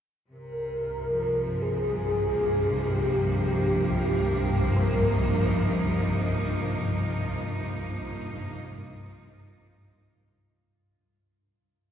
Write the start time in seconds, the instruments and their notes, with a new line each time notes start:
0.28 synth drone C2 G2 F4, cello section C3, soft synth lead A#4
1.06 cello section F3
1.61 soft synth lead G#4
2.33 cello section A#3
2.90 soft synth lead G4
4.76 soft synth lead C5
4.83 soft synth lead A#4
4.96 cello section D#4